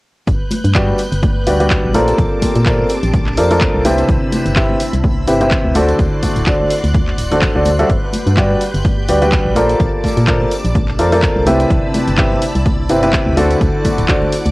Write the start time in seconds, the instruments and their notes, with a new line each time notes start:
0.27 fm bass G1, ambient pad B3, string machine B4 F#6 G6, kick, closed hi-hat, tambourine
0.51 open hi-hat, tambourine, high conga
0.64 fm bass G2, closed hi-hat, tambourine
0.75 upright piano G3 D4 F#4 G4 B4 D5, kick, clap, closed hi-hat, tambourine
0.88 high conga
0.98 open hi-hat, tambourine
1.03 ambient pad G4
1.12 fm bass G1, closed hi-hat, tambourine
1.23 kick, closed hi-hat, tambourine, high conga
1.47 fm bass D2, upright piano G3 D4 F#4 G4 B4 D5, open hi-hat, tambourine
1.60 upright piano G3 D4 F#4 G4 B4 D5, closed hi-hat, tambourine, high conga
1.70 kick, clap, closed hi-hat
1.84 fm bass A#1
1.94 upright piano A#3 F4 A4 A#4 C5 D5, string machine C4 A5 D6, ambient pad D4, open hi-hat, tambourine, high conga
2.07 closed hi-hat, tambourine
2.18 fm bass A#1, kick, closed hi-hat, tambourine
2.29 ambient pad A5
2.37 ambient pad C4
2.41 kick, open hi-hat, tambourine, high conga
2.55 fm bass A#2, closed hi-hat, tambourine
2.66 upright piano A#3 F4 A4 A#4 C5 D5, kick, clap, closed hi-hat, tambourine
2.79 high conga
2.89 open hi-hat, tambourine
3.03 fm bass A#1, closed hi-hat, tambourine
3.13 kick, closed hi-hat, tambourine, high conga
3.26 clap
3.37 fm bass F2, upright piano A#3 F4 A4 A#4 C5 D5, open hi-hat, tambourine
3.50 upright piano A#3 F4 A4 A#4 C5 D5, open hi-hat, tambourine, high conga
3.61 kick, clap, closed hi-hat, tambourine
3.74 fm bass C2
3.85 upright piano C3 E4 G4 B4 C5 E5, ambient pad E4, string machine B5 E6, open hi-hat, tambourine, high conga
3.98 closed hi-hat, tambourine
4.09 fm bass C2, kick, closed hi-hat, tambourine
4.32 open hi-hat, tambourine, high conga
4.46 fm bass G1, closed hi-hat, tambourine
4.56 upright piano C3 E4 G4 B4 C5 E5, kick, clap, closed hi-hat, tambourine
4.70 high conga
4.80 open hi-hat, tambourine
4.93 fm bass C2, closed hi-hat, tambourine
5.04 kick, closed hi-hat, tambourine, high conga
5.28 fm bass G1, upright piano C3 E4 G4 B4 C5 E5, open hi-hat, tambourine
5.41 upright piano C3 E4 G4 B4 C5 E5, closed hi-hat, tambourine, high conga
5.51 kick, clap, closed hi-hat, tambourine
5.65 fm bass D2
5.75 upright piano D3 D4 F#4 A4 C5 D5, ambient pad F#4, string machine D5 C6 F#6, open hi-hat, tambourine, high conga
5.89 closed hi-hat, tambourine
5.99 fm bass D2, kick, closed hi-hat, tambourine
6.19 ambient pad D5, tambourine
6.23 kick, open hi-hat, high conga
6.36 fm bass D1, closed hi-hat, tambourine
6.46 upright piano D3 D4 F#4 A4 C5 D5, kick, clap, closed hi-hat, tambourine
6.61 high conga
6.70 open hi-hat, tambourine
6.84 fm bass D2, closed hi-hat, tambourine
6.94 kick, closed hi-hat, tambourine, high conga
7.07 clap
7.18 fm bass D1, open hi-hat, tambourine
7.31 upright piano D3 D4 F#4 A4 C5 D5, open hi-hat, tambourine, high conga
7.42 kick, clap, closed hi-hat, tambourine
7.55 fm bass D2, upright piano D3 D4 F#4 A4 C5 D5
7.65 open hi-hat, tambourine, high conga
7.79 upright piano G3 D4 F#4 A4 C5 E5, closed hi-hat, tambourine
7.89 fm bass G1, ambient pad G4, string machine B4 G6, kick, closed hi-hat, tambourine
8.13 open hi-hat, tambourine, high conga
8.26 fm bass G2, closed hi-hat, tambourine
8.37 upright piano G3 D4 F#4 G4 B4 D5, kick, clap, closed hi-hat, tambourine
8.51 high conga
8.61 open hi-hat, tambourine
8.74 fm bass G1, closed hi-hat, tambourine
8.85 kick, closed hi-hat, tambourine, high conga
9.08 fm bass D2, upright piano G3 D4 F#4 G4 B4 D5, open hi-hat, tambourine
9.22 upright piano G3 D4 F#4 G4 B4 D5, closed hi-hat, tambourine, high conga
9.32 kick, clap, closed hi-hat
9.46 fm bass A#1
9.56 upright piano A#3 F4 A4 A#4 C5 D5, ambient pad D4, string machine D5 A5 D6, open hi-hat, tambourine, high conga
9.69 closed hi-hat, tambourine
9.79 fm bass A#1, kick, closed hi-hat, tambourine
9.94 ambient pad C4
10.04 kick, open hi-hat, tambourine, high conga
10.17 fm bass A#2, closed hi-hat, tambourine
10.27 upright piano A#3 F4 A4 A#4 C5 D5, kick, clap, closed hi-hat
10.41 ambient pad A5, high conga
10.51 open hi-hat, tambourine
10.65 fm bass A#1, closed hi-hat, tambourine
10.75 kick, closed hi-hat, tambourine, high conga
10.88 clap
10.99 fm bass F2, upright piano A#3 F4 A4 A#4 C5 D5, open hi-hat, tambourine
11.12 upright piano A#3 F4 A4 A#4 C5 D5, open hi-hat, tambourine, high conga
11.23 kick, clap, closed hi-hat, tambourine
11.36 fm bass C2
11.46 upright piano C3 E4 G4 B4 C5 E5, ambient pad E4, string machine B5 E6, open hi-hat, tambourine, high conga
11.60 closed hi-hat, tambourine
11.70 fm bass C2, kick, closed hi-hat, tambourine
11.94 open hi-hat, tambourine, high conga
12.07 fm bass G1, closed hi-hat, tambourine
12.17 upright piano C3 E4 G4 B4 C5 E5, kick, clap, closed hi-hat, tambourine
12.31 high conga
12.42 open hi-hat, tambourine
12.55 fm bass C2, closed hi-hat, tambourine
12.65 kick, closed hi-hat, tambourine, high conga
12.89 fm bass G1, upright piano C3 E4 G4 B4 C5 E5, open hi-hat, tambourine
13.03 upright piano C3 E4 G4 B4 C5 E5, closed hi-hat, tambourine, high conga
13.13 kick, clap, closed hi-hat
13.27 fm bass D2
13.37 upright piano D3 D4 F#4 A4 C5 D5, ambient pad F#4, string machine F#5 D6, open hi-hat, tambourine, high conga
13.50 closed hi-hat, tambourine
13.61 fm bass D2, kick, closed hi-hat, tambourine
13.84 kick, open hi-hat, tambourine, high conga
13.98 fm bass D1, closed hi-hat, tambourine
14.08 upright piano D3 D4 F#4 A4 C5 D5, kick, clap, closed hi-hat, tambourine
14.22 high conga
14.32 open hi-hat, tambourine
14.45 fm bass D2, closed hi-hat, tambourine